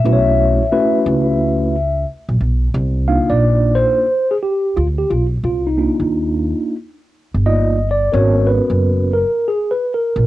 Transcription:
Already playing: vibraphone E5
0.04 upright bass B1, tine electric piano A3 C#4 E4 F#4 B4
0.13 tine electric piano C#5
0.72 tine electric piano A3 C#4 E4 F#4 B4
1.06 upright bass C#2
2.29 upright bass B1
2.41 upright bass B1
2.74 upright bass C2
3.08 tine electric piano A#3 D4 D#4 F4 F5
3.29 upright bass A#1, tine electric piano D5
3.75 tine electric piano C5
4.31 tine electric piano G#4
4.43 tine electric piano G4
4.76 upright bass D2, tine electric piano F4
4.98 tine electric piano G4
5.10 upright bass B1, tine electric piano F4
5.44 upright bass C2, tine electric piano F4
5.67 tine electric piano D#4
5.77 tine electric piano A#3 D4 D#4 F4
6.00 upright bass D#2
7.34 upright bass G1
7.46 tine electric piano A#3 D#4 F4 D5 D#5
7.91 tine electric piano D5
8.12 upright bass G#1, tine electric piano B3 C#4 F#4 A#4 C#5
8.47 tine electric piano B4
8.70 upright bass F#1
9.13 tine electric piano A#4
9.48 tine electric piano G#4
9.71 tine electric piano B4
9.94 tine electric piano A#4
10.16 upright bass A#1

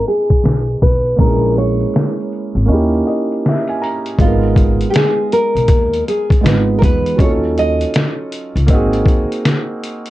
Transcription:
Already playing: felt piano B3 C#4 E4 G#4 D#5
0.08 nylon-string guitar G#4, closed hi-hat
0.30 kick, closed hi-hat
0.44 upright bass B1, snare, closed hi-hat
0.82 upright bass B1, nylon-string guitar B4, kick, closed hi-hat
1.06 closed hi-hat
1.16 upright bass A#1, felt piano G#3 A#3, nylon-string guitar A#4, kick, closed hi-hat
1.20 felt piano C#4 E4 G#4
1.58 nylon-string guitar C#5, closed hi-hat
1.81 closed hi-hat
1.94 snare, closed hi-hat
2.21 closed hi-hat
2.33 closed hi-hat
2.55 upright bass G#1, closed hi-hat
2.66 upright bass D#2, felt piano A#3 C#4 D#4, closed hi-hat
2.72 felt piano E4 G4
2.94 closed hi-hat
3.07 felt piano D#5, closed hi-hat
3.32 closed hi-hat
3.46 felt piano E5, snare, closed hi-hat
3.68 felt piano G#5, closed hi-hat
3.82 felt piano A#5, closed hi-hat
4.06 closed hi-hat
4.19 upright bass G#1, felt piano G#3 B3, nylon-string guitar F4, kick, closed hi-hat
4.23 felt piano D#4 F4
4.27 felt piano A#4
4.56 kick, closed hi-hat
4.81 closed hi-hat
4.90 nylon-string guitar G4, closed hi-hat
4.96 nylon-string guitar G#4, snare
5.32 nylon-string guitar A#4, closed hi-hat
5.55 upright bass B1, closed hi-hat
5.68 upright bass D#2, kick, closed hi-hat
5.94 closed hi-hat
6.08 nylon-string guitar G#4, closed hi-hat
6.30 kick, closed hi-hat
6.41 upright bass G#1, felt piano G#3 B3 D#4 F4
6.45 felt piano B4, snare, closed hi-hat
6.79 upright bass E2, nylon-string guitar A#4, kick
6.83 nylon-string guitar B4, closed hi-hat
7.06 closed hi-hat
7.16 upright bass D#2, felt piano F#3 C#4, kick
7.20 felt piano D#4 F4 A4, nylon-string guitar C#5, closed hi-hat
7.58 nylon-string guitar D#5, closed hi-hat
7.81 closed hi-hat
7.94 snare, closed hi-hat
8.32 closed hi-hat
8.56 upright bass C#2, closed hi-hat
8.66 upright bass G#1, felt piano A#3 C4 D#4, kick, closed hi-hat
8.72 felt piano F#4 G#4
8.93 closed hi-hat
9.06 kick, closed hi-hat
9.32 closed hi-hat
9.45 snare, closed hi-hat
9.84 closed hi-hat
10.06 closed hi-hat

